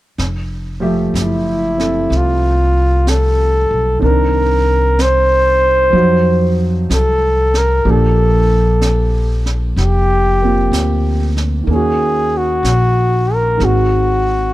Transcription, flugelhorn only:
1.17 E4
2.17 F4
3.09 A4
4.01 A4 A#4
5.01 C5
6.94 A4
7.58 A#4
7.90 A4
9.79 G4
11.72 G#4
12.37 F#4
13.34 A#4
13.65 F#4

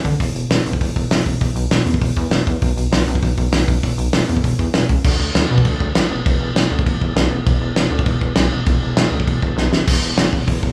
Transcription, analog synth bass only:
0.05 D3
0.20 E1
0.35 E1
0.50 E1
0.67 E1
0.81 E1
0.96 E1
1.11 E1
1.26 E1
1.41 E1
1.55 B1
1.70 E1
1.85 E2
2.01 E1
2.17 E2
2.31 E1
2.47 E2
2.62 B1
2.77 B1
2.92 B1
3.07 B1
3.23 B1
3.38 B1
3.52 B1
3.68 B1
3.83 E1
3.98 B1
4.13 E1
4.29 E2
4.44 E1
4.59 E2
4.74 E1
4.90 C#2
5.05 D2
5.19 D2
5.35 D2
5.51 B2
5.65 D2
5.80 D2
5.95 A1
6.10 E1
6.26 E1
6.40 E1
6.55 E1
6.71 D2
6.86 E1
7.01 E1
7.16 B1
7.30 E1
7.46 E1
7.61 E1
7.76 E1
7.91 D2
8.06 E1
8.22 E1
8.36 B1
8.52 E1
8.66 E1
8.82 E1
8.96 E1
9.11 D2
9.27 E1
9.42 E1
9.56 B1
9.71 E1
9.88 E1
10.01 E1
10.17 E1
10.33 E1
10.47 E1
10.62 E1

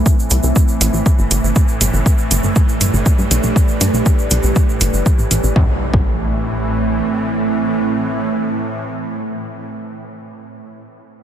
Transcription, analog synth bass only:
0.31 C2
0.44 C2
0.81 A1
0.93 A1
1.19 G1
1.31 G1
1.43 G1
1.81 G1
1.94 G1
2.31 G1
2.44 G1
2.81 G1
2.94 G1
3.19 G2
3.31 B1
3.44 B1
3.81 G2
3.94 B1
4.31 B1
4.44 B1
4.81 G1
4.94 G1
5.19 A1
5.31 A1
5.44 A1
5.56 A1
5.94 A1

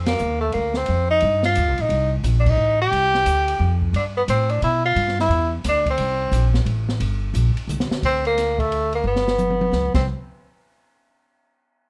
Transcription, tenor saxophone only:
0.08 A#3
0.41 A3
0.54 A#3
0.77 C4
1.11 D#4
1.45 F4
1.81 D#4
2.40 D4
2.49 D#4
2.82 G4
3.96 D4
4.17 B3
4.30 C4
4.51 D4
4.64 E4
4.86 F4
5.21 E4
5.69 D4
5.90 C4
8.05 C4
8.27 A#3
8.60 A3
8.95 A#3
9.07 B3
9.95 C4

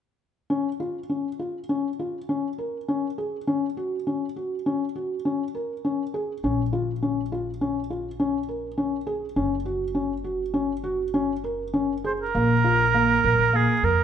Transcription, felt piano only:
0.50 C#4
0.80 F4
1.09 C#4
1.39 F4
1.69 C#4
1.99 F4
2.29 C#4
2.58 A#4
2.88 C#4
3.18 G#4
3.47 C#4
3.77 F#4
4.07 C#4
4.36 F#4
4.66 C#4
4.96 F#4
5.25 C#4
5.55 A#4
5.85 C#4
6.14 G#4
6.44 C#4
6.73 F4
7.02 C#4
7.32 F4
7.61 C#4
7.90 F4
8.20 C#4
8.49 A#4
8.78 C#4
9.07 G#4
9.36 C#4
9.66 F#4
9.95 C#4
10.24 F#4
10.54 C#4
10.84 F#4
11.14 C#4
11.44 A#4
11.74 C#4
12.04 G#4
12.35 A#3
12.64 F4
12.94 A#3
13.24 A#4
13.53 A#3
13.83 A#4

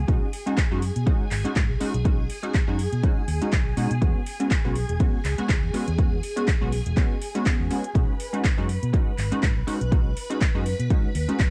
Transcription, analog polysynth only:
0.08 G#3 C#4 D#4 F#4
0.46 G#3 C#4 D#4 F#4
0.71 G#3 C#4 D#4 F#4
1.06 G#3 C#4 D#4 F#4
1.44 G#3 C#4 D#4 F#4
1.80 G#3 C#4 D#4 F#4
2.05 G#3 C#4 D#4 F#4
2.43 G#3 C#4 D#4 F#4
2.67 G#3 C#4 D#4 F#4
3.03 G#3 C#4 D#4 F#4
3.41 G#3 C#4 D#4 F#4
3.77 G#3 C#4 D#4 F#4
4.01 G#3 B3 C#4 F#4
4.40 G#3 B3 C#4 F#4
4.64 G#3 B3 C#4 F#4
5.00 G#3 B3 C#4 F#4
5.38 G#3 B3 C#4 F#4
5.73 G#3 B3 C#4 F#4
5.98 G#3 B3 C#4 F#4
6.36 G#3 B3 C#4 F#4
6.61 G#3 B3 C#4 F#4
6.97 G#3 B3 C#4 F#4
7.35 G#3 B3 C#4 F#4
7.71 G#3 B3 C#4 F#4
7.95 G#3 C#4 D#4 F#4
8.33 G#3 C#4 D#4 F#4
8.57 G#3 C#4 D#4 F#4
8.93 G#3 C#4 D#4 F#4
9.31 G#3 C#4 D#4 F#4
9.67 G#3 C#4 D#4 F#4
9.91 G#3 C#4 D#4 F#4
10.30 G#3 C#4 D#4 F#4
10.54 G#3 C#4 D#4 F#4
10.90 G#3 C#4 D#4 F#4
11.28 G#3 C#4 D#4 F#4

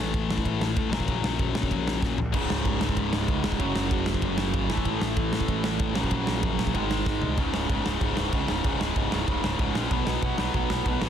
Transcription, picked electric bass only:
0.00 A1
0.14 A1
0.30 A1
0.45 A1
0.77 A2
0.92 A#1
1.08 A#1
1.24 A#1
1.40 A#1
1.56 A#1
1.71 A#1
2.02 A#2
2.18 A#1
2.34 C#1
2.50 C#1
2.65 C#1
2.81 C#1
2.96 C#1
3.28 C#2
3.44 C#1
3.60 F#1
3.76 F#1
3.91 F#1
4.07 F#1
4.22 F#1
4.54 G#1
4.70 A1
4.85 A1
5.01 A1
5.17 A1
5.33 A1
5.48 A1
5.80 A1
5.97 A#1
6.11 A#1
6.28 A#1
6.43 A#1
6.59 A#1
6.75 G#1
7.06 G#2
7.23 C2
7.38 C#1
7.54 C#1
7.69 C#1
7.86 C#1
8.01 C#1
8.18 C#1
8.33 C#2
8.49 C#1
8.64 C#1
8.81 C#1
8.96 C#1
9.13 C#1
9.28 C#1
9.44 C#1
9.59 C#1
9.76 A#1
9.91 B1
10.07 B1
10.22 B1
10.39 B1
10.55 B1
10.70 B1
10.86 B1
11.02 A1

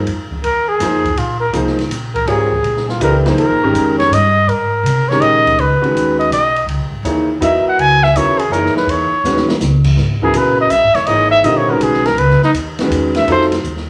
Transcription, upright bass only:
0.06 F2
0.31 muted upright bass stroke
0.44 D#2
0.80 F2
1.16 A#1
1.53 C2
1.89 A#1
2.25 G#1
2.63 A#1
3.00 C#2
3.36 D#2
3.49 A#1
3.62 G#1
3.73 F2
4.10 G2
4.47 G#2
4.83 C3
5.20 A#2
5.57 C#2
5.82 muted upright bass stroke
5.94 D#2
6.30 B1
6.67 C#2
6.79 B1
6.90 G#1
7.03 D#2
7.40 E2
7.65 muted upright bass stroke
7.78 C#2
8.14 D#2
8.50 F#2
8.75 muted upright bass stroke
8.86 E2
9.12 muted upright bass stroke
9.24 D#2
9.48 muted upright bass stroke
9.60 C#2
9.96 G#1
10.33 A#1
10.70 B1
10.82 G#1
10.94 E1
11.06 G#1
11.43 A#1
11.80 B1
12.17 C#2
12.41 muted upright bass stroke
12.53 D#2
12.90 E2
13.27 F2
13.64 D#2

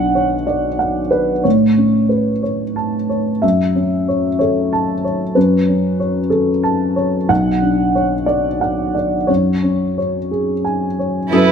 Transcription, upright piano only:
Already playing: B1 D4 F#5
0.15 C#5
0.47 D5
0.79 F#5
1.11 B4 D5
1.44 A2 C#5
1.77 C#4
2.09 B4
2.43 C#5
2.76 A5
3.09 C#5
3.42 F#2 E5
3.75 C#4
4.08 C#5
4.39 A4 C#5
4.73 A5
5.04 C#5
5.35 F#2 B4
5.68 C#4
6.00 C#5
6.30 A4
6.63 A5
6.96 C#5
7.29 B1 F#5
7.62 D4
7.95 C#5
8.26 D5
8.61 F#5
8.95 D5
9.27 F#2 C#5
9.63 C#4
9.98 C#5
10.31 G#4
10.65 G#5
10.99 C#5
11.33 F#2

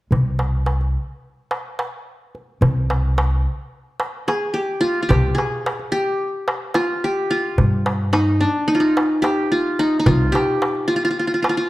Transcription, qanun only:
4.28 G#4
4.54 G4
4.81 F4
5.03 F4
5.09 G4
5.35 G#4
5.92 G4
6.75 F4
7.04 G4
7.31 F4
8.13 D#4
8.40 D4
8.68 D#4
8.75 F4
8.80 D#4
9.22 G4
9.52 F4
9.79 D#4
9.99 D#4
10.06 F4
10.32 G4
10.88 F4
10.96 F4
11.05 F4
11.11 F4
11.19 F4
11.27 F4
11.34 F4
11.42 F4
11.49 F4
11.57 F4

